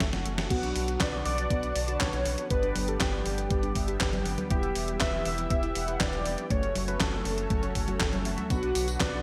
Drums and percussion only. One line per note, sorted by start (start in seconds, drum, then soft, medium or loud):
0.00 kick loud
0.00 snare loud
0.00 closed hi-hat medium
0.13 snare medium
0.13 closed hi-hat soft
0.26 closed hi-hat medium
0.38 snare loud
0.38 closed hi-hat medium
0.50 kick loud
0.50 closed hi-hat medium
0.50 crash loud
0.63 closed hi-hat soft
0.76 open hi-hat loud
0.88 closed hi-hat medium
1.00 kick loud
1.00 snare loud
1.00 clap loud
1.00 closed hi-hat medium
1.25 open hi-hat medium
1.38 closed hi-hat medium
1.50 kick loud
1.50 closed hi-hat medium
1.63 closed hi-hat soft
1.76 open hi-hat loud
1.88 closed hi-hat medium
2.00 kick loud
2.00 snare loud
2.00 clap loud
2.00 closed hi-hat medium
2.13 closed hi-hat soft
2.25 open hi-hat loud
2.38 closed hi-hat medium
2.50 kick loud
2.50 closed hi-hat medium
2.63 closed hi-hat soft
2.76 open hi-hat loud
2.76 high conga medium
2.88 closed hi-hat medium
3.01 kick loud
3.01 snare loud
3.01 clap loud
3.01 closed hi-hat medium
3.26 open hi-hat medium
3.38 closed hi-hat medium
3.50 kick loud
3.50 closed hi-hat medium
3.63 closed hi-hat soft
3.75 kick medium
3.75 open hi-hat loud
3.88 closed hi-hat medium
4.00 kick loud
4.00 snare loud
4.00 clap loud
4.00 closed hi-hat medium
4.13 closed hi-hat soft
4.13 high conga medium
4.26 open hi-hat medium
4.38 closed hi-hat medium
4.38 high conga medium
4.50 kick loud
4.50 closed hi-hat medium
4.63 closed hi-hat soft
4.75 open hi-hat loud
4.88 closed hi-hat medium
5.00 kick loud
5.00 snare loud
5.00 clap loud
5.00 closed hi-hat medium
5.25 open hi-hat medium
5.38 closed hi-hat medium
5.50 kick loud
5.50 closed hi-hat medium
5.63 closed hi-hat soft
5.75 open hi-hat loud
5.88 closed hi-hat medium
6.00 kick loud
6.00 snare loud
6.00 clap loud
6.00 closed hi-hat medium
6.13 closed hi-hat soft
6.26 open hi-hat medium
6.38 closed hi-hat medium
6.50 kick loud
6.50 closed hi-hat medium
6.63 closed hi-hat soft
6.75 open hi-hat loud
6.75 high conga medium
6.88 closed hi-hat medium
7.00 kick loud
7.00 snare loud
7.00 clap loud
7.00 closed hi-hat medium
7.25 open hi-hat medium
7.38 closed hi-hat medium
7.50 kick loud
7.50 closed hi-hat medium
7.63 closed hi-hat soft
7.75 kick medium
7.75 open hi-hat loud
7.88 closed hi-hat medium
7.88 high conga medium
8.00 kick loud
8.00 snare loud
8.00 clap loud
8.00 closed hi-hat medium
8.13 closed hi-hat soft
8.13 high conga medium
8.25 open hi-hat medium
8.38 closed hi-hat medium
8.38 high conga medium
8.50 kick loud
8.50 closed hi-hat medium
8.50 tambourine soft
8.63 closed hi-hat soft
8.75 open hi-hat loud
8.75 tambourine medium
8.88 closed hi-hat medium
8.88 tambourine soft
9.00 kick loud
9.00 snare loud
9.00 clap loud
9.00 closed hi-hat medium
9.00 tambourine soft